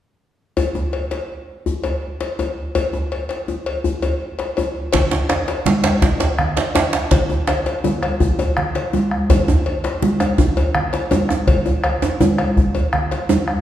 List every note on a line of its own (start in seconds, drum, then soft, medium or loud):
0.57 cowbell soft
0.57 djembe bass medium
0.75 djembe tone soft
0.93 cowbell soft
1.11 cowbell soft
1.11 djembe slap soft
1.66 djembe bass medium
1.84 cowbell soft
1.84 djembe slap soft
1.84 djembe tone soft
2.21 cowbell soft
2.21 djembe slap soft
2.39 cowbell soft
2.39 djembe tone medium
2.75 cowbell medium
2.75 djembe bass medium
2.93 djembe tone soft
3.12 cowbell soft
3.29 cowbell soft
3.29 djembe slap soft
3.48 djembe tone medium
3.66 cowbell soft
3.84 djembe bass medium
4.02 cowbell soft
4.02 djembe slap soft
4.02 djembe tone soft
4.39 cowbell soft
4.39 djembe slap soft
4.57 cowbell soft
4.57 djembe tone medium
4.93 bombo low medium
4.93 cowbell medium
4.93 djembe slap medium
4.93 low conga medium
4.93 djembe bass medium
5.11 djembe slap medium
5.11 djembe tone medium
5.29 bombo rim medium
5.29 cowbell medium
5.29 djembe slap medium
5.48 cowbell soft
5.48 djembe slap medium
5.66 djembe slap medium
5.66 high conga medium
5.66 djembe tone medium
5.66 low conga medium
5.84 bombo rim medium
5.84 cowbell medium
5.84 djembe slap medium
6.02 bombo low medium
6.02 djembe slap medium
6.02 djembe bass medium
6.20 cowbell soft
6.20 djembe slap medium
6.20 djembe tone soft
6.39 bombo rim medium
6.39 low conga medium
6.57 cowbell soft
6.57 djembe slap medium
6.75 cowbell soft
6.75 djembe slap loud
6.75 djembe tone medium
6.93 bombo rim medium
6.93 djembe slap medium
7.11 bombo low medium
7.11 cowbell medium
7.11 djembe slap medium
7.11 low conga medium
7.11 djembe bass medium
7.30 djembe tone medium
7.47 bombo rim medium
7.47 cowbell medium
7.47 djembe slap medium
7.66 cowbell soft
7.66 djembe slap soft
7.84 djembe tone medium
7.84 high conga medium
7.84 low conga medium
8.03 bombo rim medium
8.03 cowbell soft
8.20 bombo low medium
8.20 djembe bass medium
8.39 cowbell soft
8.39 djembe tone medium
8.57 bombo rim medium
8.57 low conga medium
8.75 cowbell soft
8.75 djembe slap medium
8.93 djembe tone medium
8.93 high conga medium
9.11 bombo rim medium
9.29 bombo low medium
9.29 cowbell medium
9.29 djembe tone medium
9.29 djembe bass medium
9.29 low conga medium
9.48 djembe tone medium
9.66 cowbell soft
9.84 cowbell soft
9.84 djembe slap medium
10.02 djembe tone medium
10.02 high conga medium
10.02 low conga medium
10.20 bombo rim medium
10.20 cowbell soft
10.20 djembe tone medium
10.38 bombo low loud
10.38 djembe tone medium
10.38 djembe bass medium
10.57 cowbell soft
10.57 djembe tone medium
10.75 bombo rim medium
10.75 low conga medium
10.93 cowbell soft
10.93 djembe slap soft
11.11 cowbell soft
11.11 high conga medium
11.11 djembe tone medium
11.29 bombo rim medium
11.29 djembe tone medium
11.47 bombo low medium
11.47 cowbell medium
11.47 djembe slap soft
11.47 djembe bass medium
11.47 low conga medium
11.66 bombo rim soft
11.66 djembe tone medium
11.84 bombo rim medium
11.84 cowbell soft
11.84 djembe slap soft
11.84 high conga soft
12.02 cowbell soft
12.02 djembe slap medium
12.02 djembe tone medium
12.20 high conga medium
12.20 djembe tone medium
12.20 low conga medium
12.38 bombo rim medium
12.38 cowbell soft
12.38 djembe slap soft
12.38 high conga soft
12.57 bombo low medium
12.57 djembe slap soft
12.57 djembe bass medium
12.75 cowbell soft
12.75 djembe tone medium
12.93 bombo rim medium
12.93 djembe slap soft
12.93 high conga soft
12.93 low conga medium
13.11 bombo rim soft
13.11 cowbell soft
13.11 djembe slap medium
13.29 cowbell soft
13.29 djembe tone loud
13.29 high conga medium
13.29 djembe tone medium
13.48 bombo rim medium